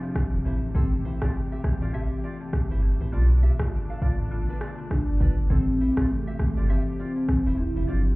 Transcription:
Already playing: string section C3 F3 G3
0.03 marimba F3 C4 D4 G4
0.15 kick, cross-stick
0.33 sub bass E1
0.45 sub bass A1, marimba E3 A3 C4 G4, string section A3 G4, nylon-string guitar E4 C5
0.75 marimba E3 A3 C4 G4, nylon-string guitar C4 A4, kick
1.05 nylon-string guitar E4 C5
1.21 marimba E3 A3 C4 G4, nylon-string guitar F4 D5, kick, cross-stick
1.52 nylon-string guitar G4 E5
1.64 marimba E3 A3 C4 G4, kick, cross-stick
1.81 sub bass A1, nylon-string guitar F4 D5
1.93 marimba E3 A3 C4 G4, nylon-string guitar G4 E5
2.24 nylon-string guitar F4 D5
2.40 marimba E3 A3 C4 G4
2.53 kick, cross-stick
2.70 sub bass G1, nylon-string guitar E4 C5
2.83 marimba E3 A3 C4 G4
3.00 sub bass A1, nylon-string guitar E4 C5
3.12 sub bass B1, string section B2 D4, marimba D3 A3 B3 F4, nylon-string guitar F4 D5
3.43 nylon-string guitar G4 E5
3.59 marimba D3 A3 B3 F4, kick, cross-stick
3.90 nylon-string guitar A4 F5
4.01 marimba D3 A3 B3 F4, nylon-string guitar F4 D5, kick
4.19 sub bass A1
4.31 marimba D3 A3 B3 F4
4.49 nylon-string guitar D4 B4
4.61 nylon-string guitar F4 D5, cross-stick
4.78 marimba D3 A3 B3 F4
4.91 soft synth lead D4, kick, cross-stick
5.08 sub bass G1
5.20 marimba D3 A3 B3 F4, nylon-string guitar D4 B4, kick
5.38 sub bass G1
5.50 sub bass A1, string section C3 G4, marimba E3 A3 C4 G4, nylon-string guitar C4 A4, soft synth lead C4, kick, shaker
5.69 shaker
5.80 nylon-string guitar E4 C5, shaker
5.97 marimba E3 A3 C4 G4, nylon-string guitar F4 D5, kick, cross-stick, shaker
6.10 soft synth lead A3, shaker
6.26 nylon-string guitar G4 E5, shaker
6.39 marimba E3 A3 C4 G4, soft synth lead A3, kick, cross-stick, shaker
6.57 sub bass G1, nylon-string guitar F4 D5, shaker
6.69 marimba E3 A3 C4 G4, soft synth lead C4, nylon-string guitar G4 E5, shaker
6.86 shaker
6.99 nylon-string guitar F4 D5, shaker
7.16 marimba E3 A3 C4 G4, shaker
7.28 kick, cross-stick, shaker
7.46 sub bass E1, nylon-string guitar E4 C5, shaker
7.58 marimba E3 A3 C4 G4, soft synth lead E4, shaker
7.75 sub bass F1, nylon-string guitar E4 C5, shaker
7.87 sub bass G1, marimba F3 C4 D4 G4, string section G3 F4, nylon-string guitar F4 D5, soft synth lead G4, shaker
8.06 shaker

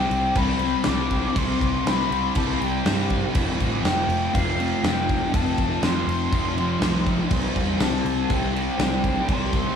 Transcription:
Already playing: distorted electric guitar C3 G3 C4, flute G5
0.11 picked electric bass C2, crash
0.35 picked electric bass C2, distorted electric guitar C3 G3 C4, flute B5, kick, crash
0.59 distorted electric guitar C4, crash
0.64 distorted electric guitar G3
0.84 picked electric bass C2, distorted electric guitar C3, snare, crash
0.88 distorted electric guitar G3 C4, flute D6
1.11 kick, crash
1.35 picked electric bass C2, distorted electric guitar C3 G3 C4, flute C6, kick, crash
1.60 picked electric bass C2, kick, crash
1.84 picked electric bass C2, distorted electric guitar C3 G3 C4, flute B5, snare, crash
2.10 picked electric bass C2, crash
2.35 picked electric bass C2, distorted electric guitar C3 G3 C4, flute A5, kick, crash
2.60 picked electric bass C2, distorted electric guitar G3 C4, flute G5, crash
2.85 picked electric bass G2, distorted electric guitar C3 G3 C4, snare, crash
3.10 kick, crash
3.35 picked electric bass F1, distorted electric guitar F2 C3 F3, kick, crash
3.60 picked electric bass A1, kick, crash
3.84 picked electric bass F1, distorted electric guitar F2 C3 F3, flute G5, snare, crash
4.07 picked electric bass F1, crash
4.33 picked electric bass F1, distorted electric guitar F2 C3 F3, flute F5, kick, crash
4.57 distorted electric guitar C3 F3, crash
4.82 picked electric bass F1, distorted electric guitar F2 C3 F3, flute G5, snare, crash
5.09 kick, crash
5.32 picked electric bass F1, distorted electric guitar F2 C3 F3, flute A5, kick, crash
5.57 picked electric bass F1, kick, crash
5.82 picked electric bass F1, distorted electric guitar F2 C3 F3, flute C6, snare, crash
6.07 picked electric bass F1, crash
6.32 picked electric bass F1, distorted electric guitar F2 C3 F3, kick, crash
6.56 picked electric bass F1, distorted electric guitar C3 F3, crash
6.80 picked electric bass C2, distorted electric guitar F2 C3 F3, snare, crash
7.07 kick, crash
7.30 picked electric bass C2, distorted electric guitar C3 G3 C4, kick, crash
7.56 picked electric bass E2, kick, crash
7.79 picked electric bass C2, distorted electric guitar C3 G3 C4, flute A5, snare, crash
8.05 picked electric bass C2, crash
8.30 picked electric bass C2, distorted electric guitar C3 G3 C4, kick, crash
8.34 flute G5
8.53 distorted electric guitar G3 C4, crash
8.78 picked electric bass C2, distorted electric guitar C3 G3 C4, snare, crash
9.04 kick, crash
9.28 picked electric bass C2, distorted electric guitar C3 G3 C4, kick, crash
9.33 flute C6
9.52 picked electric bass C2, kick, crash

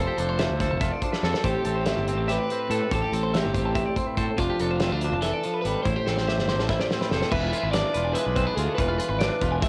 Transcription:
Already playing: clean electric guitar F3 A4
0.00 overdriven electric guitar C5
0.08 clean electric guitar G4
0.17 fingered electric bass F1, clean electric guitar D4 A4, closed hi-hat
0.29 clean electric guitar C5
0.39 clean electric guitar F4 E5, snare, closed hi-hat
0.50 fingered electric bass D2
0.60 clean electric guitar A4 C5, kick, snare, closed hi-hat
0.71 fingered electric bass F1, clean electric guitar A5
0.81 clean electric guitar F4 E5, kick, snare, closed hi-hat
0.92 clean electric guitar D5
1.02 clean electric guitar D4 C5, kick, closed hi-hat
1.13 clean electric guitar B4, snare
1.23 fingered electric bass F2, clean electric guitar A4, snare
1.34 snare
1.44 fingered electric bass A1, clean electric guitar A2 C4 C5, overdriven electric guitar G4, kick, closed hi-hat
1.55 clean electric guitar G4
1.65 fingered electric bass A1, clean electric guitar C4 A4, closed hi-hat
1.75 clean electric guitar C5
1.86 clean electric guitar C4 E5, snare, closed hi-hat
1.97 fingered electric bass G1
2.08 clean electric guitar C4 C5, closed hi-hat
2.18 fingered electric bass A1, clean electric guitar A5
2.28 clean electric guitar G4 E5, overdriven electric guitar B4, snare, closed hi-hat
2.39 clean electric guitar D5
2.50 clean electric guitar C4 C5, closed hi-hat
2.60 clean electric guitar B4
2.70 fingered electric bass A2, clean electric guitar A4, closed hi-hat
2.91 fingered electric bass A1, clean electric guitar A2 G4 C5, overdriven electric guitar A4, kick, closed hi-hat
3.02 clean electric guitar G4
3.12 fingered electric bass A1, clean electric guitar C4 A4, closed hi-hat
3.23 clean electric guitar C5
3.33 clean electric guitar C4 E5, overdriven electric guitar G4, snare, closed hi-hat
3.44 fingered electric bass G1
3.54 clean electric guitar C4 C5, kick, closed hi-hat
3.64 fingered electric bass A1, clean electric guitar A5
3.75 clean electric guitar C4 E5, kick, closed hi-hat
3.86 clean electric guitar D5
3.96 clean electric guitar C4 C5, kick, closed hi-hat
4.07 clean electric guitar B4
4.17 fingered electric bass A2, clean electric guitar A4 C5, kick, closed hi-hat
4.38 fingered electric bass F1, clean electric guitar F3 D4 C5, overdriven electric guitar F4, kick, closed hi-hat
4.50 clean electric guitar G4
4.60 fingered electric bass F1, clean electric guitar D4 A4, closed hi-hat
4.71 clean electric guitar C5
4.80 clean electric guitar C4 E5, snare, closed hi-hat
4.91 fingered electric bass D2, clean electric guitar D4
5.01 clean electric guitar D4 C5, closed hi-hat
5.12 fingered electric bass F1, clean electric guitar A5
5.22 clean electric guitar E3 E5, overdriven electric guitar A4, snare, closed hi-hat
5.33 clean electric guitar D5
5.44 clean electric guitar F3 C5, closed hi-hat
5.54 clean electric guitar B4
5.62 fingered electric bass G#1, clean electric guitar A4, overdriven electric guitar B4, closed hi-hat
5.66 clean electric guitar G3
5.83 fingered electric bass A1, clean electric guitar A2 E4 C5, overdriven electric guitar C5, kick, closed hi-hat
5.96 clean electric guitar G4
6.06 fingered electric bass A1, clean electric guitar C4 A4, snare
6.17 clean electric guitar C5, snare
6.27 clean electric guitar G4 E5, snare
6.38 fingered electric bass G1, snare
6.48 clean electric guitar G4 C5, snare
6.58 fingered electric bass A1, clean electric guitar A5, snare
6.69 clean electric guitar E4 E5, kick, snare
6.80 clean electric guitar G4 D5, snare
6.91 clean electric guitar C4 C5, snare
7.01 clean electric guitar B4, snare
7.11 fingered electric bass F1, clean electric guitar A4 C5, snare
7.22 snare
7.32 fingered electric bass E1, clean electric guitar E3 B4, overdriven electric guitar E5, kick, crash
7.43 clean electric guitar F4
7.53 clean electric guitar F4 G#4, closed hi-hat
7.63 fingered electric bass G#1, clean electric guitar B4
7.71 clean electric guitar D4 D5, overdriven electric guitar D5, snare, closed hi-hat
7.94 fingered electric bass E1, clean electric guitar F4 B4, closed hi-hat
8.05 clean electric guitar G#5
8.13 clean electric guitar G#3 E5, overdriven electric guitar B4, closed hi-hat
8.26 fingered electric bass B1, clean electric guitar D5
8.36 clean electric guitar C4 C5, kick, closed hi-hat
8.46 clean electric guitar D4 B4
8.56 fingered electric bass D2, clean electric guitar F4 A4, overdriven electric guitar G#4, closed hi-hat
8.75 fingered electric bass E1, overdriven electric guitar B4, clean electric guitar B4, kick, closed hi-hat
8.79 clean electric guitar E3 F4
8.88 clean electric guitar F4
8.98 clean electric guitar F4 G#4, closed hi-hat
9.09 fingered electric bass G#1, clean electric guitar B4
9.19 clean electric guitar D4 D5, snare, closed hi-hat
9.41 fingered electric bass E1, clean electric guitar F4 B4, kick, closed hi-hat
9.52 clean electric guitar G#5
9.61 clean electric guitar G#3 E5, kick, closed hi-hat

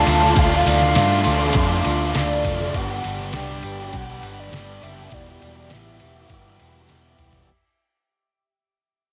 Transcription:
Already playing: overdriven electric guitar D3 A3 D4 F4, ambient pad F4 D5 C6, soft synth lead A5
0.05 fingered electric bass D2, overdriven electric guitar A3 D4 F4, ride
0.24 snare
0.35 fingered electric bass D2, overdriven electric guitar D3 A3 D4 F4, soft synth lead F5, kick, ride
0.64 fingered electric bass D2, overdriven electric guitar A3 D4 F4, ride
0.82 snare
0.95 fingered electric bass G2, overdriven electric guitar D3 A3 D4 F4, snare, ride
1.24 fingered electric bass D2, overdriven electric guitar A3 D4 F4, ride
1.53 fingered electric bass F2, overdriven electric guitar D3 A3 D4, kick, ride
1.57 overdriven electric guitar F4
1.85 fingered electric bass D2, overdriven electric guitar A3 D4 F4, ride
2.14 fingered electric bass D2, overdriven electric guitar D3 A3 D4 F4, soft synth lead D5, snare, ride
2.44 fingered electric bass F1, overdriven electric guitar A3 D4 F4, kick, ride
2.60 snare
2.74 fingered electric bass G1, overdriven electric guitar G2 D3 G3 B3 D4 G4, ambient pad G4 D5 B5, soft synth lead F#5, kick, ride
3.03 fingered electric bass G1, overdriven electric guitar G3 B3 D4 G4, ride
3.19 snare
3.33 fingered electric bass C2, overdriven electric guitar G3 B3 D4 G4, soft synth lead G5, snare, ride
3.63 fingered electric bass G1, overdriven electric guitar G3 B3 D4 G4, ride
3.92 fingered electric bass B1, overdriven electric guitar G2 D3 G3 B3 D4 G4, kick, ride
3.96 soft synth lead F#5
4.23 fingered electric bass G1, overdriven electric guitar G3 B3 D4 G4, ride
4.39 soft synth lead D5
4.51 fingered electric bass G1, overdriven electric guitar G3 B3 D4 G4, snare, ride
4.81 fingered electric bass F#1, overdriven electric guitar G3 B3 D4 G4, soft synth lead E5, ride
4.98 snare
5.11 fingered electric bass E1, overdriven electric guitar E2 B2 E3 G3 B3 E4 G4, soft synth lead D5, ambient pad E5 D6, kick, ride
5.41 fingered electric bass E1, overdriven electric guitar E3 G3 E4 G4, ride
5.70 fingered electric bass A1, overdriven electric guitar E3 G3 B3 E4 G4, soft synth lead E5, snare, ride
5.98 fingered electric bass E1, overdriven electric guitar E3 G3 E4 G4, ride
6.28 fingered electric bass G1, overdriven electric guitar E2 B2 E3 G3 B3 E4 G4, kick, ride
6.57 overdriven electric guitar E3 G3 E4 G4, ride
6.61 fingered electric bass E1
6.88 fingered electric bass E1, overdriven electric guitar E3 G3 B3 E4 G4, snare, ride
7.18 fingered electric bass E1, overdriven electric guitar E3 G3 E4 G4, mid tom, ride
7.33 floor tom

